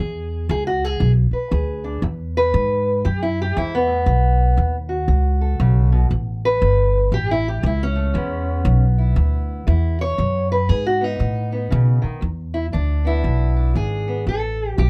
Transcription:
Already playing: E2 G#4
0.49 C#2 G#3 G#4
0.67 F#4
0.84 G#4
1.00 B1 E2
1.31 B4, muted upright bass stroke
1.51 D2 G#3 G#4
1.84 D4
2.02 E2
2.37 B4
2.54 G#2 G#3
3.05 E2 F#2 G4
3.23 E4
3.42 G4
3.56 E2 G#2 E4
3.75 B3
3.87 A2
4.06 B1 B2
4.57 D#2 D#3
4.89 F#4
5.08 C#2 B2
5.41 A4
5.60 B1 C#3
5.92 B2
6.11 A1 A2
6.45 B4
6.61 G1 A3
7.12 A1 E2 G4
7.31 E4
7.48 G4
7.63 C#2 A3 E4
7.83 C#4
7.95 A3
8.14 E2 G#3 B3
8.65 B1 G#3
8.98 E4
9.16 D2 E2
9.67 E2 G#3 E4
10.01 C#5
10.18 F#2 B2
10.52 B4
10.69 G#2 F#3 G#4
10.86 F#4
11.01 B3 D#4
11.19 A2 B2
11.52 B3
11.71 B2 C#3
12.02 D#3, muted upright bass stroke
12.21 E2
12.54 E4
12.72 D2 G#3 D4
13.05 B3 E4
13.23 B1 E2
13.56 D4
13.75 G#1 G#3 G#4
14.08 B3
14.27 A1 A2 A4
14.77 B1 E3 G4

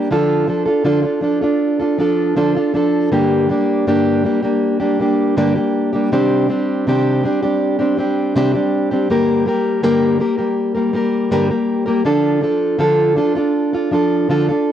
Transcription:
Already playing: G3 A#3 D4 G4
0.11 D3 F3 D4 F4 A4
0.47 F3 D4 F4 A4
0.66 D4 F4 A4
0.84 D3 F3 D4 F4 A4
1.02 D4 F4 A4
1.21 F3 D4 F4 A4
1.41 D4 F4 A4
1.79 D4 F4 A4
1.98 F3 D4 F4 A4
2.36 D3 F3 D4 F4 A4
2.55 D4 F4 A4
2.74 F3 D4 F4 A4
3.12 G2 D3 G3 A#3 D4 G4
3.49 G3 A#3 D4 G4
3.87 G2 D3 G3 A#3 D4 G4
4.24 G3 A#3 D4 G4
4.42 G3 A#3 D4 G4
4.80 G3 A#3 D4 G4
5.00 G3 A#3 D4 G4
5.36 G2 D3 G3 A#3 D4 G4
5.55 G3 A#3 D4 G4
5.93 G3 A#3 D4 G4
6.12 C3 D#3 G3 C4 D4 G4
6.49 G3 C4 D4 G4
6.87 C3 D#3 G3 C4 D4 G4
7.23 G3 C4 D4 G4
7.43 G3 C4 D4 G4
7.79 G3 C4 D4 G4
7.97 G3 C4 D4 G4
8.35 C3 D#3 G3 C4 D4 G4
8.54 G3 C4 D4 G4
8.91 G3 C4 D4 G4
9.10 G2 D3 G3 A#3 G4 A#4
9.46 G3 A#3 G4 A#4
9.83 G2 D3 G3 A#3 G4 A#4
10.19 G3 A#3 G4 A#4
10.38 G3 A#3 G4 A#4
10.75 G3 A#3 G4 A#4
10.93 G3 A#3 G4 A#4
11.31 G2 D3 G3 A#3 G4 A#4
11.50 G3 A#3 G4 A#4
11.86 G3 A#3 G4 A#4
12.05 D3 F3 D4 F4 A4
12.41 F3 D4 F4 A4
12.78 D3 F3 D4 F4 A4
13.16 F3 D4 F4 A4
13.35 D4 F4 A4
13.73 D4 F4 A4
13.91 F3 D4 F4 A4
14.29 D3 F3 D4 F4 A4
14.49 D4 F4 A4

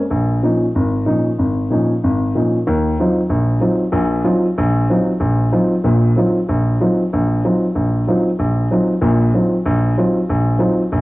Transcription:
0.11 A#1
0.43 A#2 F3 C#4 D#4
0.75 G#1
1.06 A#2 F3 C#4 D#4
1.39 G#1
1.70 A#2 F3 C#4 D#4
2.03 G#1
2.35 A#2 F3 C#4 D#4
2.67 D#2
3.00 F#3 C4 D#4 F4
3.29 A#1
3.60 F#3 C4 D#4 F4
3.92 A#1 A#2
4.24 F#3 C4 D#4 F4
4.58 A#1
4.90 F#3 C4 D#4 F4
5.20 A#1
5.52 F#3 C4 D#4 F4
5.84 A#1 A#2
6.16 F#3 C4 D#4 F4
6.49 A#1
6.80 F#3 C4 D#4 F4
7.13 A#1
7.44 F#3 C4 D#4 F4
7.75 A#1
8.07 F#3 C4 D#4 F4
8.39 A#1
8.71 F#3 C4 D#4 F4
9.01 A#1 A#2
9.34 F#3 C4 D#4 F4
9.65 A#1
9.97 F#3 C4 D#4 F4
10.29 A#1
10.59 F#3 C4 D#4 F4
10.92 A#1

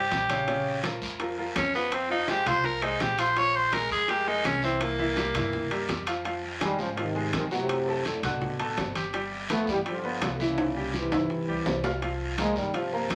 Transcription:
Already playing: G3 G4 C5
0.11 A#1, high bongo, low bongo, high conga, high timbale, short guiro
0.30 C#3 C#4 C#5, high conga, high timbale, short guiro
0.48 C#3 C#4 C#5, high bongo, high timbale, long guiro
0.66 high conga
0.84 F3 F4 A#4, high bongo, high conga, high timbale, short guiro
1.02 F2, high conga, short guiro
1.19 F3 F4 A#4, high bongo, high conga, high timbale, long guiro
1.38 F3 F4 A#4, high conga
1.56 F2 C#4, high bongo, low bongo, high conga, high timbale, short guiro
1.74 F3 B3 F4 F5, high conga, short guiro
1.92 C4, high bongo, high conga, high timbale, long guiro
2.10 F3 D#4 F4 F5, high bongo, high conga
2.28 G#3 G4 G#4 C5, high bongo, high conga, high timbale, short guiro
2.46 C2 F3 F4 C5 F5, high bongo, low conga, high timbale, short guiro
2.64 A#4, high bongo, high conga, long guiro
2.82 G#3 D#4 G#4 C5, high bongo, high conga, high timbale
3.00 A#1 G4, high bongo, low bongo, high conga, high timbale, short guiro
3.18 F3 F4 C5 F5, high timbale, short guiro
3.36 F3 F4 C#5 F5, high bongo, high conga, high timbale, long guiro
3.54 C5, high conga
3.72 G#3 G#4 A#4, high bongo, high conga, high timbale, short guiro
3.90 F2 G#4, high conga, short guiro
4.08 G#3 G4 G#4 A#4, high bongo, high conga, high timbale, long guiro
4.27 G#3 D#4 G#4 A#4, high conga
4.44 C2 C#4, high bongo, low bongo, high conga, high timbale, short guiro
4.62 E3 C4 E4 E5, high conga, short guiro
4.80 A#3, high bongo, high conga, high timbale, long guiro
4.99 E3 E4 E5, high bongo, high conga
5.16 G3 G4 A#4, high bongo, high conga, high timbale, short guiro
5.34 G2 E3 E4 E5, high bongo, low conga, high timbale, short guiro
5.53 high bongo, high conga, low conga, long guiro
5.71 G3 G4 A#4, high bongo, high conga, high timbale
5.89 F2, high bongo, low bongo, high conga, high timbale, short guiro
6.07 F3 F4 F5, high timbale, short guiro
6.25 F3 F4 F5, high bongo, high conga, high timbale, long guiro
6.43 high conga
6.61 D#3 G3 G#3 G#4 G#5, high bongo, high conga, high timbale, short guiro
6.79 G#2 C#3 F3, high conga, short guiro
6.97 C3 D#3 F3 F4 F5, high bongo, high conga, high timbale, long guiro
7.15 G#3 G#4 G#5, high conga
7.33 F#2 C3 D#3, high bongo, low bongo, high conga, high timbale, short guiro
7.51 A2 C3 F#3 F#4 F#5, high conga, short guiro
7.69 high bongo, high conga, high timbale, long guiro
7.87 A3 A4 A5, high bongo, high conga
8.05 A2 D3, high bongo, high conga, high timbale, short guiro
8.23 A1 B2 D3 F#4 F#5 F#6, high bongo, low conga, high timbale, short guiro
8.41 high bongo, high conga, low conga, long guiro
8.60 A3 A4 A5, high bongo, high conga, high timbale
8.77 G1, high bongo, low bongo, high conga, high timbale, low timbale, short guiro
8.95 G4 G5 G6, high conga, high timbale, short guiro
9.13 G3 G4 G5, high bongo, high timbale, long guiro
9.32 high conga
9.49 F3 A3 B3 B4 B5, high bongo, high conga, high timbale, short guiro
9.67 G2 E3 G3, high conga, short guiro
9.86 D3 F3 G3 G4 G5, high bongo, high conga, high timbale, long guiro
10.04 B3 B4 B5, high conga
10.22 C2 D3 F3, high bongo, low bongo, high conga, high timbale, low timbale, short guiro
10.34 D3
10.40 A#2 C#3 E3 E4 E5, high conga, short guiro
10.58 high bongo, high conga, high timbale, long guiro
10.76 G3 G4 G5, high bongo, high conga
10.94 C3 E3, high bongo, high conga, short guiro
11.12 G2 C3 E3 E4 E5 E6, low conga, high timbale, short guiro
11.30 high bongo, high conga, long guiro
11.48 C#2 G3 G4 G5, high bongo, high conga
11.66 C2, high bongo, low bongo, high conga, low timbale, short guiro
11.84 F4 F5 F6, low timbale, short guiro
12.02 F3 F4 F5, high bongo, high conga, high timbale, long guiro
12.21 high conga
12.38 F3 G#3 A#3 A#4 A#5, high bongo, high conga, high timbale, short guiro
12.56 G2 D#3 G3, high conga, short guiro
12.74 C3 F3 F4 F5, high bongo, high conga, high timbale, long guiro
12.93 A#3 A#4 A#5, high conga
13.10 G2 C3 F3, high bongo, low bongo, high conga, high timbale, short guiro

